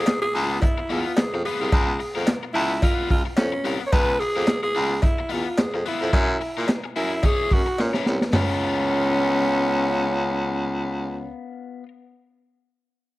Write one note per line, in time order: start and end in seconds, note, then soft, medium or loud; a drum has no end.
0.00 0.21 G#4 loud
0.06 snare loud
0.06 clap medium
0.06 closed hi-hat medium
0.06 cowbell medium
0.22 0.62 G#4 loud
0.22 muted overdriven electric guitar stroke medium
0.35 0.58 C#2 loud
0.35 0.56 B3 loud
0.35 0.51 F4 loud
0.35 0.50 A#4 loud
0.35 open hi-hat medium
0.51 muted overdriven electric guitar stroke soft
0.61 0.92 E4 medium
0.61 muted overdriven electric guitar stroke soft
0.61 kick medium
0.61 closed hi-hat medium
0.61 cowbell medium
0.78 0.83 E2 soft
0.78 muted overdriven electric guitar stroke medium
0.90 1.03 E2 medium
0.90 1.11 B3 medium
0.90 1.06 F4 medium
0.90 1.19 F4 medium
0.90 1.05 A#4 loud
0.90 open hi-hat medium
1.06 muted overdriven electric guitar stroke medium
1.17 1.23 F2 medium
1.17 1.45 G#4 medium
1.17 muted overdriven electric guitar stroke soft
1.17 snare loud
1.17 clap loud
1.17 closed hi-hat medium
1.17 cowbell medium
1.33 1.43 F2 medium
1.33 muted overdriven electric guitar stroke soft
1.45 1.58 B3 medium
1.45 1.59 F4 medium
1.45 2.24 G#4 medium
1.45 1.59 B4 medium
1.45 open hi-hat medium
1.60 1.70 C2 medium
1.60 1.72 B3 medium
1.60 1.72 F4 medium
1.60 1.71 A#4 medium
1.72 1.96 C#2 loud
1.72 1.89 B3 medium
1.72 1.88 F4 medium
1.72 1.86 A#4 medium
1.72 kick loud
1.72 closed hi-hat medium
1.72 cowbell medium
1.87 muted overdriven electric guitar stroke soft
1.99 muted overdriven electric guitar stroke soft
1.99 open hi-hat medium
2.15 2.26 F2 medium
2.15 2.27 B3 soft
2.15 2.26 F4 medium
2.15 2.26 A#4 medium
2.27 snare loud
2.27 clap loud
2.27 closed hi-hat medium
2.27 cowbell medium
2.43 muted overdriven electric guitar stroke soft
2.54 2.78 C#2 loud
2.54 2.71 B3 medium
2.54 2.80 E4 medium
2.54 2.71 F4 medium
2.54 2.70 A#4 medium
2.54 open hi-hat medium
2.71 muted overdriven electric guitar stroke soft
2.82 2.94 A#3 medium
2.82 3.08 F4 medium
2.82 3.09 F4 medium
2.82 3.09 B4 medium
2.82 kick medium
2.82 closed hi-hat loud
2.82 cowbell medium
2.94 3.03 C#2 medium
2.94 3.09 B3 medium
3.10 3.23 C#2 medium
3.10 3.23 F4 medium
3.10 muted overdriven electric guitar stroke soft
3.10 kick medium
3.10 open hi-hat medium
3.26 muted overdriven electric guitar stroke medium
3.37 3.51 F2 medium
3.37 3.78 C#4 medium
3.37 muted overdriven electric guitar stroke soft
3.37 snare loud
3.37 clap loud
3.37 closed hi-hat medium
3.37 cowbell medium
3.52 muted overdriven electric guitar stroke soft
3.64 3.78 C2 medium
3.64 3.81 B3 medium
3.64 3.81 F4 medium
3.64 3.80 A#4 loud
3.64 open hi-hat medium
3.81 muted overdriven electric guitar stroke medium
3.86 3.94 C#5 medium
3.92 4.16 C#2 loud
3.92 4.10 B3 medium
3.92 4.09 F4 loud
3.92 4.08 A#4 loud
3.92 4.21 B4 loud
3.92 kick loud
3.92 closed hi-hat medium
3.92 cowbell loud
4.09 muted overdriven electric guitar stroke soft
4.19 4.62 G#4 loud
4.19 muted overdriven electric guitar stroke soft
4.19 open hi-hat medium
4.36 4.46 F2 loud
4.36 4.47 B3 medium
4.36 4.46 F4 medium
4.36 4.46 A#4 medium
4.47 snare loud
4.47 clap medium
4.47 closed hi-hat medium
4.47 cowbell medium
4.63 5.04 G#4 loud
4.63 muted overdriven electric guitar stroke medium
4.75 4.99 C#2 loud
4.75 4.92 B3 medium
4.75 4.91 F4 medium
4.75 4.89 A#4 medium
4.75 open hi-hat medium
4.91 muted overdriven electric guitar stroke soft
5.02 5.33 E4 medium
5.02 muted overdriven electric guitar stroke soft
5.02 kick loud
5.02 closed hi-hat loud
5.02 cowbell medium
5.19 5.24 E2 soft
5.19 muted overdriven electric guitar stroke soft
5.29 5.44 E2 medium
5.29 5.46 B3 medium
5.29 5.46 F4 medium
5.29 5.61 F4 medium
5.29 5.44 A#4 loud
5.29 open hi-hat medium
5.45 muted overdriven electric guitar stroke medium
5.58 5.64 F2 soft
5.58 5.86 G#4 medium
5.58 muted overdriven electric guitar stroke soft
5.58 snare loud
5.58 clap medium
5.58 closed hi-hat medium
5.58 cowbell medium
5.74 5.84 F2 medium
5.74 muted overdriven electric guitar stroke soft
5.86 5.99 B3 medium
5.86 6.65 E4 medium
5.86 5.99 F4 medium
5.86 6.00 B4 medium
5.86 open hi-hat medium
6.01 6.12 F2 medium
6.01 6.12 B3 soft
6.01 6.12 F4 medium
6.01 6.11 A#4 medium
6.13 6.36 F#2 loud
6.13 6.29 E4 loud
6.13 6.29 G#4 loud
6.13 6.28 A#4 loud
6.13 kick loud
6.13 closed hi-hat medium
6.13 cowbell medium
6.29 muted overdriven electric guitar stroke soft
6.41 muted overdriven electric guitar stroke soft
6.41 open hi-hat medium
6.57 6.67 A#2 loud
6.57 6.68 E4 medium
6.57 6.67 G#4 medium
6.57 6.67 A#4 medium
6.68 snare loud
6.68 clap medium
6.68 closed hi-hat medium
6.68 cowbell medium
6.84 muted overdriven electric guitar stroke soft
6.96 7.19 F#2 medium
6.96 7.27 E4 medium
6.96 7.12 E4 medium
6.96 7.12 G#4 loud
6.96 7.11 A#4 loud
6.96 open hi-hat medium
7.12 muted overdriven electric guitar stroke soft
7.23 7.49 E4 medium
7.23 7.49 G#4 medium
7.23 7.55 G#4 loud
7.23 7.50 C#5 medium
7.23 kick medium
7.23 closed hi-hat loud
7.23 cowbell medium
7.39 7.44 F#2 soft
7.50 7.64 F#2 medium
7.50 7.83 F#4 medium
7.50 muted overdriven electric guitar stroke soft
7.50 kick medium
7.50 open hi-hat medium
7.66 muted overdriven electric guitar stroke medium
7.78 7.92 A#2 medium
7.78 8.23 C#4 medium
7.78 muted overdriven electric guitar stroke soft
7.78 snare medium
7.78 cowbell medium
7.94 8.06 E4 medium
7.94 8.06 G#4 medium
7.94 8.07 A#4 medium
7.94 snare medium
8.06 8.19 C2 medium
8.06 muted overdriven electric guitar stroke soft
8.06 snare medium
8.22 muted overdriven electric guitar stroke soft
8.22 snare medium
8.33 11.30 C#2 loud
8.33 11.83 B3 loud
8.33 11.30 C#4 loud
8.33 11.86 F4 medium
8.33 snare loud
8.33 floor tom loud
8.33 open hi-hat medium
8.33 cowbell medium
8.38 11.88 A#4 medium